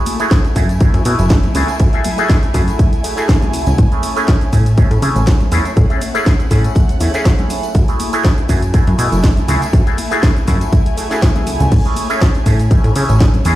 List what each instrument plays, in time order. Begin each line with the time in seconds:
Already playing: clav A3 E4 F#4 G#4, violin section A3 E4 G#5
0.06 open hi-hat, high conga, shaker
0.20 clav A3 E4 F#4 G#4, closed hi-hat, tambourine, shaker
0.31 kick, snare, closed hi-hat, shaker
0.45 closed hi-hat, tambourine, shaker
0.56 analog synth bass F#2, clav A3 E4 F#4 G#4, kick, open hi-hat, shaker
0.69 closed hi-hat, tambourine, shaker
0.80 clav A3 E4 F#4 G#4, kick, closed hi-hat, tambourine, high conga, low conga, shaker
0.94 analog synth bass F#2, closed hi-hat, tambourine, shaker
1.05 analog synth bass B2, clav A3 E4 F#4 G#4, open hi-hat, shaker
1.19 analog synth bass F#1, closed hi-hat, tambourine, shaker
1.29 kick, snare, closed hi-hat, tambourine, shaker
1.43 closed hi-hat, tambourine, high conga, low conga, shaker
1.55 analog synth bass C#2, clav A3 E4 F#4 G#4, open hi-hat, shaker
1.68 closed hi-hat, tambourine, shaker
1.80 analog synth bass F#2, kick, closed hi-hat, tambourine, shaker
1.93 clav A3 E4 F#4 G#4, closed hi-hat, tambourine, shaker
2.04 open hi-hat, high conga, low conga, shaker
2.18 clav A3 E4 F#4 G#4, closed hi-hat, tambourine, shaker
2.29 kick, snare, closed hi-hat, shaker
2.43 closed hi-hat, tambourine, shaker
2.54 analog synth bass F#2, clav A3 E4 F#4 G#4, kick, open hi-hat, shaker
2.68 closed hi-hat, tambourine, shaker
2.79 kick, closed hi-hat, tambourine, high conga, low conga, shaker
2.93 closed hi-hat, tambourine, shaker
3.03 clav A3 E4 F#4 G#4, open hi-hat, shaker
3.17 clav A3 E4 F#4 G#4, tambourine, shaker
3.29 kick, snare, closed hi-hat, shaker
3.41 clav A3 E4 F#4 G#4, closed hi-hat, tambourine, high conga, low conga, shaker
3.54 analog synth bass C#2, open hi-hat, shaker
3.66 analog synth bass C#2, closed hi-hat, tambourine, shaker
3.78 analog synth bass A2, violin section C#4, kick, closed hi-hat, shaker
3.91 clav A3 C#4 E4 G#4, closed hi-hat, tambourine, shaker
4.03 open hi-hat, high conga, shaker
4.16 clav A3 C#4 E4 G#4, closed hi-hat, tambourine, shaker
4.28 kick, snare, closed hi-hat, shaker
4.41 closed hi-hat, tambourine, shaker
4.52 analog synth bass A2, clav A3 C#4 E4 G#4, kick, open hi-hat, shaker
4.66 closed hi-hat, tambourine, shaker
4.77 clav A3 C#4 E4 G#4, kick, closed hi-hat, tambourine, high conga, low conga, shaker
4.91 analog synth bass A2, closed hi-hat, tambourine, shaker
5.02 analog synth bass C#3, clav A3 C#4 E4 G#4, open hi-hat, shaker
5.16 analog synth bass A1, closed hi-hat, tambourine, shaker
5.27 kick, snare, closed hi-hat, tambourine, shaker
5.40 closed hi-hat, tambourine, high conga, low conga, shaker
5.52 analog synth bass E2, clav A3 C#4 E4 G#4, open hi-hat, shaker
5.65 closed hi-hat, tambourine, shaker
5.77 analog synth bass A2, violin section F#5, kick, closed hi-hat, tambourine, shaker
5.90 clav A3 C#4 E4 G#4, closed hi-hat, tambourine, shaker
6.01 open hi-hat, high conga, shaker
6.14 clav A3 C#4 E4 G#4, closed hi-hat, tambourine, shaker
6.26 kick, snare, closed hi-hat, tambourine, shaker
6.39 closed hi-hat, tambourine, shaker
6.51 analog synth bass A2, clav A3 C#4 E4 G#4, kick, open hi-hat, shaker
6.64 closed hi-hat, tambourine, shaker
6.75 kick, closed hi-hat, tambourine, high conga, low conga, shaker
6.89 analog synth bass E2, closed hi-hat, tambourine, shaker
7.00 analog synth bass E2, clav A3 C#4 E4 G#4, open hi-hat, shaker
7.14 clav A3 C#4 E4 G#4, closed hi-hat, tambourine, shaker
7.25 kick, snare, closed hi-hat, shaker
7.39 clav A3 C#4 E4 G#4, closed hi-hat, tambourine, high conga, low conga, shaker
7.50 open hi-hat, shaker
7.63 closed hi-hat, tambourine, shaker
7.75 analog synth bass F#2, violin section A3 E4 G#5, kick, closed hi-hat, shaker
7.88 clav A3 E4 F#4 G#4, closed hi-hat, tambourine, shaker
8.00 open hi-hat, high conga, shaker
8.13 clav A3 E4 F#4 G#4, closed hi-hat, tambourine, shaker
8.24 kick, snare, closed hi-hat, tambourine, shaker
8.37 closed hi-hat, tambourine, shaker
8.49 analog synth bass F#2, clav A3 E4 F#4 G#4, kick, open hi-hat, shaker
8.62 closed hi-hat, tambourine, shaker
8.73 clav A3 E4 F#4 G#4, kick, closed hi-hat, tambourine, high conga, low conga, shaker
8.87 analog synth bass F#2, closed hi-hat, tambourine, shaker
8.98 analog synth bass B2, clav A3 E4 F#4 G#4, open hi-hat, shaker
9.12 analog synth bass F#1, closed hi-hat, tambourine, shaker
9.24 kick, snare, closed hi-hat, tambourine, shaker
9.37 closed hi-hat, tambourine, high conga, low conga, shaker
9.48 analog synth bass C#2, clav A3 E4 F#4 G#4, open hi-hat, shaker
9.62 closed hi-hat, tambourine, shaker
9.73 analog synth bass F#2, kick, closed hi-hat, shaker
9.86 clav A3 E4 F#4 G#4, closed hi-hat, tambourine, shaker
9.98 open hi-hat, high conga, shaker
10.11 clav A3 E4 F#4 G#4, closed hi-hat, tambourine, shaker
10.23 kick, snare, closed hi-hat, shaker
10.37 closed hi-hat, tambourine, shaker
10.47 analog synth bass F#2, clav A3 E4 F#4 G#4, kick, open hi-hat, shaker
10.61 closed hi-hat, tambourine, shaker
10.72 kick, closed hi-hat, tambourine, high conga, low conga, shaker
10.86 closed hi-hat, tambourine, shaker
10.97 clav A3 E4 F#4 G#4, open hi-hat, shaker
11.11 clav A3 E4 F#4 G#4, snare, closed hi-hat, tambourine, shaker
11.22 kick, snare, closed hi-hat, shaker
11.35 clav A3 E4 F#4 G#4, closed hi-hat, tambourine, high conga, low conga, shaker
11.47 analog synth bass C#2, open hi-hat, shaker
11.60 analog synth bass C#2, closed hi-hat, tambourine, shaker
11.72 analog synth bass A2, violin section C#4, kick, closed hi-hat, crash, tambourine, shaker
11.85 clav A3 C#4 E4 G#4, closed hi-hat, tambourine, shaker
11.96 open hi-hat, high conga, shaker
12.09 clav A3 C#4 E4 G#4, closed hi-hat, tambourine, shaker
12.21 kick, snare, closed hi-hat, shaker
12.34 closed hi-hat, tambourine, shaker
12.46 analog synth bass A2, clav A3 C#4 E4 G#4, kick, open hi-hat, shaker
12.60 closed hi-hat, tambourine, shaker
12.70 clav A3 C#4 E4 G#4, kick, closed hi-hat, tambourine, high conga, low conga, shaker
12.84 analog synth bass A2, closed hi-hat, tambourine, shaker
12.95 analog synth bass C#3, clav A3 C#4 E4 G#4, open hi-hat, shaker
13.09 analog synth bass A1, closed hi-hat, tambourine, shaker
13.20 kick, snare, closed hi-hat, tambourine, shaker
13.34 closed hi-hat, tambourine, high conga, low conga, shaker
13.45 analog synth bass E2, clav A3 C#4 E4 G#4, open hi-hat, shaker